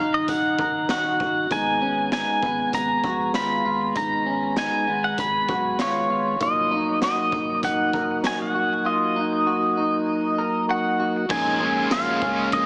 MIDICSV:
0, 0, Header, 1, 7, 480
1, 0, Start_track
1, 0, Key_signature, -6, "minor"
1, 0, Tempo, 612245
1, 1179, Time_signature, 4, 2, 24, 8
1, 9925, End_track
2, 0, Start_track
2, 0, Title_t, "Pedal steel guitar"
2, 0, Program_c, 0, 26
2, 0, Note_on_c, 0, 77, 90
2, 111, Note_on_c, 0, 75, 73
2, 114, Note_off_c, 0, 77, 0
2, 228, Note_on_c, 0, 78, 83
2, 229, Note_off_c, 0, 75, 0
2, 702, Note_off_c, 0, 78, 0
2, 711, Note_on_c, 0, 78, 83
2, 1189, Note_off_c, 0, 78, 0
2, 1193, Note_on_c, 0, 80, 91
2, 1662, Note_off_c, 0, 80, 0
2, 1671, Note_on_c, 0, 80, 92
2, 2149, Note_off_c, 0, 80, 0
2, 2152, Note_on_c, 0, 82, 90
2, 2625, Note_off_c, 0, 82, 0
2, 2628, Note_on_c, 0, 83, 88
2, 3108, Note_off_c, 0, 83, 0
2, 3111, Note_on_c, 0, 82, 93
2, 3591, Note_off_c, 0, 82, 0
2, 3594, Note_on_c, 0, 80, 88
2, 3953, Note_on_c, 0, 78, 84
2, 3957, Note_off_c, 0, 80, 0
2, 4070, Note_off_c, 0, 78, 0
2, 4075, Note_on_c, 0, 83, 89
2, 4559, Note_on_c, 0, 73, 81
2, 4561, Note_off_c, 0, 83, 0
2, 5038, Note_on_c, 0, 75, 90
2, 5044, Note_off_c, 0, 73, 0
2, 5477, Note_off_c, 0, 75, 0
2, 5516, Note_on_c, 0, 75, 91
2, 5956, Note_off_c, 0, 75, 0
2, 5994, Note_on_c, 0, 78, 95
2, 6481, Note_off_c, 0, 78, 0
2, 6481, Note_on_c, 0, 80, 84
2, 6594, Note_off_c, 0, 80, 0
2, 6600, Note_on_c, 0, 78, 84
2, 6948, Note_on_c, 0, 75, 79
2, 6960, Note_off_c, 0, 78, 0
2, 8352, Note_off_c, 0, 75, 0
2, 8393, Note_on_c, 0, 78, 90
2, 8867, Note_on_c, 0, 80, 110
2, 8880, Note_off_c, 0, 78, 0
2, 9312, Note_off_c, 0, 80, 0
2, 9346, Note_on_c, 0, 77, 102
2, 9826, Note_on_c, 0, 75, 101
2, 9837, Note_off_c, 0, 77, 0
2, 9925, Note_off_c, 0, 75, 0
2, 9925, End_track
3, 0, Start_track
3, 0, Title_t, "Clean electric guitar"
3, 0, Program_c, 1, 27
3, 0, Note_on_c, 1, 63, 70
3, 461, Note_off_c, 1, 63, 0
3, 462, Note_on_c, 1, 70, 67
3, 701, Note_off_c, 1, 70, 0
3, 704, Note_on_c, 1, 66, 79
3, 933, Note_off_c, 1, 66, 0
3, 943, Note_on_c, 1, 66, 67
3, 1181, Note_off_c, 1, 66, 0
3, 1184, Note_on_c, 1, 63, 84
3, 1421, Note_off_c, 1, 63, 0
3, 1424, Note_on_c, 1, 61, 64
3, 1659, Note_off_c, 1, 61, 0
3, 1662, Note_on_c, 1, 63, 70
3, 1901, Note_off_c, 1, 63, 0
3, 1904, Note_on_c, 1, 59, 68
3, 2382, Note_off_c, 1, 59, 0
3, 2383, Note_on_c, 1, 66, 67
3, 2619, Note_off_c, 1, 66, 0
3, 2622, Note_on_c, 1, 65, 78
3, 2855, Note_off_c, 1, 65, 0
3, 2864, Note_on_c, 1, 65, 69
3, 3101, Note_on_c, 1, 63, 83
3, 3102, Note_off_c, 1, 65, 0
3, 3339, Note_off_c, 1, 63, 0
3, 3342, Note_on_c, 1, 61, 65
3, 3578, Note_off_c, 1, 61, 0
3, 3581, Note_on_c, 1, 63, 75
3, 3818, Note_off_c, 1, 63, 0
3, 3821, Note_on_c, 1, 59, 75
3, 4300, Note_off_c, 1, 59, 0
3, 4302, Note_on_c, 1, 66, 62
3, 4539, Note_off_c, 1, 66, 0
3, 4542, Note_on_c, 1, 65, 77
3, 4773, Note_off_c, 1, 65, 0
3, 4782, Note_on_c, 1, 65, 68
3, 5013, Note_off_c, 1, 65, 0
3, 5023, Note_on_c, 1, 65, 89
3, 5261, Note_off_c, 1, 65, 0
3, 5263, Note_on_c, 1, 63, 69
3, 5501, Note_off_c, 1, 63, 0
3, 5503, Note_on_c, 1, 66, 78
3, 5741, Note_off_c, 1, 66, 0
3, 5742, Note_on_c, 1, 63, 68
3, 6221, Note_off_c, 1, 63, 0
3, 6222, Note_on_c, 1, 70, 68
3, 6461, Note_off_c, 1, 70, 0
3, 6464, Note_on_c, 1, 66, 76
3, 6694, Note_off_c, 1, 66, 0
3, 6704, Note_on_c, 1, 66, 68
3, 6938, Note_off_c, 1, 66, 0
3, 6941, Note_on_c, 1, 65, 82
3, 7180, Note_off_c, 1, 65, 0
3, 7184, Note_on_c, 1, 63, 74
3, 7422, Note_off_c, 1, 63, 0
3, 7423, Note_on_c, 1, 66, 74
3, 7661, Note_off_c, 1, 66, 0
3, 7662, Note_on_c, 1, 63, 66
3, 8141, Note_off_c, 1, 63, 0
3, 8141, Note_on_c, 1, 70, 66
3, 8378, Note_off_c, 1, 70, 0
3, 8381, Note_on_c, 1, 66, 71
3, 8612, Note_off_c, 1, 66, 0
3, 8621, Note_on_c, 1, 66, 66
3, 8860, Note_off_c, 1, 66, 0
3, 8863, Note_on_c, 1, 63, 90
3, 9097, Note_off_c, 1, 63, 0
3, 9101, Note_on_c, 1, 61, 77
3, 9340, Note_off_c, 1, 61, 0
3, 9340, Note_on_c, 1, 65, 81
3, 9580, Note_off_c, 1, 65, 0
3, 9582, Note_on_c, 1, 61, 80
3, 9925, Note_off_c, 1, 61, 0
3, 9925, End_track
4, 0, Start_track
4, 0, Title_t, "Overdriven electric guitar"
4, 0, Program_c, 2, 29
4, 8851, Note_on_c, 2, 46, 68
4, 8859, Note_on_c, 2, 53, 84
4, 8866, Note_on_c, 2, 56, 78
4, 8872, Note_on_c, 2, 61, 84
4, 8878, Note_on_c, 2, 65, 81
4, 9081, Note_off_c, 2, 65, 0
4, 9090, Note_on_c, 2, 65, 58
4, 9095, Note_off_c, 2, 46, 0
4, 9099, Note_off_c, 2, 53, 0
4, 9102, Note_off_c, 2, 61, 0
4, 9103, Note_off_c, 2, 56, 0
4, 9111, Note_on_c, 2, 61, 54
4, 9127, Note_on_c, 2, 56, 44
4, 9333, Note_on_c, 2, 46, 75
4, 9335, Note_off_c, 2, 65, 0
4, 9337, Note_off_c, 2, 56, 0
4, 9342, Note_on_c, 2, 53, 73
4, 9343, Note_off_c, 2, 61, 0
4, 9346, Note_on_c, 2, 56, 84
4, 9353, Note_on_c, 2, 61, 76
4, 9360, Note_on_c, 2, 65, 87
4, 9561, Note_off_c, 2, 65, 0
4, 9571, Note_on_c, 2, 65, 57
4, 9576, Note_off_c, 2, 46, 0
4, 9581, Note_off_c, 2, 53, 0
4, 9582, Note_off_c, 2, 61, 0
4, 9583, Note_off_c, 2, 56, 0
4, 9591, Note_on_c, 2, 61, 48
4, 9610, Note_on_c, 2, 56, 41
4, 9811, Note_on_c, 2, 53, 65
4, 9815, Note_off_c, 2, 65, 0
4, 9816, Note_off_c, 2, 56, 0
4, 9825, Note_off_c, 2, 61, 0
4, 9825, Note_on_c, 2, 56, 70
4, 9837, Note_on_c, 2, 61, 66
4, 9849, Note_on_c, 2, 65, 78
4, 9925, Note_off_c, 2, 53, 0
4, 9925, Note_off_c, 2, 56, 0
4, 9925, Note_off_c, 2, 61, 0
4, 9925, Note_off_c, 2, 65, 0
4, 9925, End_track
5, 0, Start_track
5, 0, Title_t, "Tonewheel organ"
5, 0, Program_c, 3, 16
5, 0, Note_on_c, 3, 51, 58
5, 0, Note_on_c, 3, 63, 64
5, 1151, Note_off_c, 3, 51, 0
5, 1151, Note_off_c, 3, 63, 0
5, 1175, Note_on_c, 3, 59, 63
5, 1177, Note_on_c, 3, 56, 55
5, 4986, Note_off_c, 3, 59, 0
5, 4987, Note_off_c, 3, 56, 0
5, 5019, Note_on_c, 3, 58, 55
5, 5019, Note_on_c, 3, 63, 65
5, 5020, Note_on_c, 3, 54, 59
5, 8828, Note_off_c, 3, 54, 0
5, 8828, Note_off_c, 3, 58, 0
5, 8828, Note_off_c, 3, 63, 0
5, 8856, Note_on_c, 3, 58, 58
5, 8858, Note_on_c, 3, 56, 65
5, 8858, Note_on_c, 3, 61, 70
5, 9925, Note_off_c, 3, 56, 0
5, 9925, Note_off_c, 3, 58, 0
5, 9925, Note_off_c, 3, 61, 0
5, 9925, End_track
6, 0, Start_track
6, 0, Title_t, "Sub bass"
6, 0, Program_c, 4, 38
6, 0, Note_on_c, 4, 27, 93
6, 189, Note_off_c, 4, 27, 0
6, 220, Note_on_c, 4, 27, 100
6, 431, Note_off_c, 4, 27, 0
6, 460, Note_on_c, 4, 30, 92
6, 671, Note_off_c, 4, 30, 0
6, 697, Note_on_c, 4, 27, 95
6, 909, Note_off_c, 4, 27, 0
6, 941, Note_on_c, 4, 27, 85
6, 1151, Note_off_c, 4, 27, 0
6, 1182, Note_on_c, 4, 32, 99
6, 1751, Note_off_c, 4, 32, 0
6, 1900, Note_on_c, 4, 32, 86
6, 2111, Note_off_c, 4, 32, 0
6, 2141, Note_on_c, 4, 32, 99
6, 2352, Note_off_c, 4, 32, 0
6, 2379, Note_on_c, 4, 34, 96
6, 2590, Note_off_c, 4, 34, 0
6, 2621, Note_on_c, 4, 32, 94
6, 2832, Note_off_c, 4, 32, 0
6, 2860, Note_on_c, 4, 32, 97
6, 3071, Note_off_c, 4, 32, 0
6, 3100, Note_on_c, 4, 32, 99
6, 3670, Note_off_c, 4, 32, 0
6, 3818, Note_on_c, 4, 32, 100
6, 4030, Note_off_c, 4, 32, 0
6, 4060, Note_on_c, 4, 32, 102
6, 4271, Note_off_c, 4, 32, 0
6, 4300, Note_on_c, 4, 35, 94
6, 4511, Note_off_c, 4, 35, 0
6, 4539, Note_on_c, 4, 32, 90
6, 4750, Note_off_c, 4, 32, 0
6, 4774, Note_on_c, 4, 32, 93
6, 4988, Note_off_c, 4, 32, 0
6, 5021, Note_on_c, 4, 27, 96
6, 5590, Note_off_c, 4, 27, 0
6, 5740, Note_on_c, 4, 27, 93
6, 5951, Note_off_c, 4, 27, 0
6, 5981, Note_on_c, 4, 27, 98
6, 6191, Note_off_c, 4, 27, 0
6, 6220, Note_on_c, 4, 30, 89
6, 6431, Note_off_c, 4, 30, 0
6, 6462, Note_on_c, 4, 27, 93
6, 6672, Note_off_c, 4, 27, 0
6, 6700, Note_on_c, 4, 27, 94
6, 6911, Note_off_c, 4, 27, 0
6, 8860, Note_on_c, 4, 34, 108
6, 9282, Note_off_c, 4, 34, 0
6, 9336, Note_on_c, 4, 34, 105
6, 9549, Note_off_c, 4, 34, 0
6, 9577, Note_on_c, 4, 37, 89
6, 9789, Note_off_c, 4, 37, 0
6, 9818, Note_on_c, 4, 34, 108
6, 9925, Note_off_c, 4, 34, 0
6, 9925, End_track
7, 0, Start_track
7, 0, Title_t, "Drums"
7, 219, Note_on_c, 9, 42, 70
7, 220, Note_on_c, 9, 36, 77
7, 298, Note_off_c, 9, 36, 0
7, 298, Note_off_c, 9, 42, 0
7, 459, Note_on_c, 9, 36, 82
7, 538, Note_off_c, 9, 36, 0
7, 697, Note_on_c, 9, 38, 101
7, 700, Note_on_c, 9, 42, 65
7, 776, Note_off_c, 9, 38, 0
7, 779, Note_off_c, 9, 42, 0
7, 942, Note_on_c, 9, 36, 81
7, 1020, Note_off_c, 9, 36, 0
7, 1181, Note_on_c, 9, 42, 70
7, 1182, Note_on_c, 9, 36, 96
7, 1259, Note_off_c, 9, 42, 0
7, 1260, Note_off_c, 9, 36, 0
7, 1662, Note_on_c, 9, 38, 104
7, 1667, Note_on_c, 9, 42, 66
7, 1740, Note_off_c, 9, 38, 0
7, 1745, Note_off_c, 9, 42, 0
7, 1901, Note_on_c, 9, 36, 78
7, 1980, Note_off_c, 9, 36, 0
7, 2142, Note_on_c, 9, 36, 72
7, 2142, Note_on_c, 9, 42, 69
7, 2220, Note_off_c, 9, 36, 0
7, 2221, Note_off_c, 9, 42, 0
7, 2380, Note_on_c, 9, 36, 80
7, 2459, Note_off_c, 9, 36, 0
7, 2619, Note_on_c, 9, 38, 98
7, 2622, Note_on_c, 9, 42, 64
7, 2698, Note_off_c, 9, 38, 0
7, 2700, Note_off_c, 9, 42, 0
7, 3102, Note_on_c, 9, 36, 94
7, 3102, Note_on_c, 9, 42, 66
7, 3180, Note_off_c, 9, 36, 0
7, 3180, Note_off_c, 9, 42, 0
7, 3579, Note_on_c, 9, 38, 108
7, 3584, Note_on_c, 9, 42, 62
7, 3657, Note_off_c, 9, 38, 0
7, 3662, Note_off_c, 9, 42, 0
7, 4060, Note_on_c, 9, 42, 70
7, 4062, Note_on_c, 9, 36, 76
7, 4138, Note_off_c, 9, 42, 0
7, 4140, Note_off_c, 9, 36, 0
7, 4301, Note_on_c, 9, 36, 81
7, 4380, Note_off_c, 9, 36, 0
7, 4539, Note_on_c, 9, 38, 98
7, 4541, Note_on_c, 9, 42, 64
7, 4617, Note_off_c, 9, 38, 0
7, 4620, Note_off_c, 9, 42, 0
7, 5022, Note_on_c, 9, 42, 69
7, 5023, Note_on_c, 9, 36, 99
7, 5100, Note_off_c, 9, 42, 0
7, 5101, Note_off_c, 9, 36, 0
7, 5501, Note_on_c, 9, 38, 105
7, 5506, Note_on_c, 9, 42, 65
7, 5580, Note_off_c, 9, 38, 0
7, 5584, Note_off_c, 9, 42, 0
7, 5742, Note_on_c, 9, 36, 78
7, 5820, Note_off_c, 9, 36, 0
7, 5982, Note_on_c, 9, 36, 77
7, 5982, Note_on_c, 9, 42, 73
7, 6060, Note_off_c, 9, 36, 0
7, 6060, Note_off_c, 9, 42, 0
7, 6220, Note_on_c, 9, 36, 80
7, 6299, Note_off_c, 9, 36, 0
7, 6459, Note_on_c, 9, 38, 96
7, 6462, Note_on_c, 9, 42, 66
7, 6537, Note_off_c, 9, 38, 0
7, 6540, Note_off_c, 9, 42, 0
7, 8858, Note_on_c, 9, 49, 99
7, 8860, Note_on_c, 9, 36, 102
7, 8936, Note_off_c, 9, 49, 0
7, 8938, Note_off_c, 9, 36, 0
7, 9338, Note_on_c, 9, 38, 116
7, 9338, Note_on_c, 9, 54, 62
7, 9343, Note_on_c, 9, 51, 60
7, 9416, Note_off_c, 9, 54, 0
7, 9417, Note_off_c, 9, 38, 0
7, 9421, Note_off_c, 9, 51, 0
7, 9578, Note_on_c, 9, 36, 89
7, 9657, Note_off_c, 9, 36, 0
7, 9817, Note_on_c, 9, 51, 63
7, 9819, Note_on_c, 9, 36, 87
7, 9896, Note_off_c, 9, 51, 0
7, 9898, Note_off_c, 9, 36, 0
7, 9925, End_track
0, 0, End_of_file